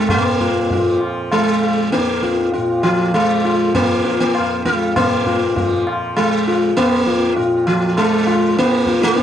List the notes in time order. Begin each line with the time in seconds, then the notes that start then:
Already playing: F2 A#2 F3
0.09 A#3, tabla na, tabla ge
0.14 A#2
0.40 F4, tabla ge
0.70 F4, tabla tin, tabla ge
0.75 F3
1.01 tabla na
1.32 G#3, tabla na
1.37 F3
1.62 tabla na
1.92 A#3, tabla te
1.97 F2
2.08 tabla te
2.22 F4, tabla ke
2.38 tabla te
2.52 F4, tabla tin
2.57 A#2
2.83 F3 F4, tabla na
3.14 F3 G#3, tabla na
3.44 F4, tabla na
3.74 A#3 F4, tabla na, tabla ge
3.79 F3
4.05 F4, tabla te
4.20 A#3
4.35 tabla na
4.39 F2
4.65 G#3 F4, tabla ke
4.96 A#2 A#3, tabla na, tabla ge
5.26 F4, tabla ge
5.55 F3 F4, tabla tin, tabla ge
5.87 tabla na
6.16 F3 G#3, tabla na
6.47 F4, tabla na
6.77 F2 A#3, tabla na
7.07 F4, tabla ke
7.36 A#2 F4, tabla tin
7.67 F3, tabla na
7.97 F3 G#3, tabla na
8.27 F4, tabla na
8.57 F3 A#3, tabla te
8.72 tabla te
8.87 F4, tabla ke
9.01 A#3, tabla te
9.16 F2, tabla te